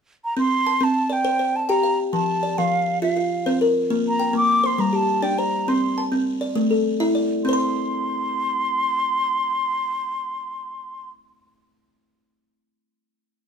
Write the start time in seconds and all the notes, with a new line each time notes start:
0.25 A#5
0.37 C4 C6
0.67 A5
0.81 C4 A5
1.10 D5 G5
1.25 C5
1.39 C5
1.56 A5
1.69 G4 G5 A#5
1.83 F5
2.13 F3 A5
2.43 D5
2.58 F3 F5
3.02 F4 F5
3.17 F4
3.46 C4 C5
3.61 A#4
3.90 A#3
4.09 A#5
4.20 G5
4.33 A#3 D6
4.64 C5 C6
4.78 G3 A#5
4.93 G4 A5
5.22 D4 D5 G5
5.38 C5 A#5
5.68 C4 C6
5.98 A5
6.12 C4
6.41 D5
6.55 A3
6.71 A4
7.00 E4 E5
7.15 D5
7.45 C4 C5 C6
7.53 C6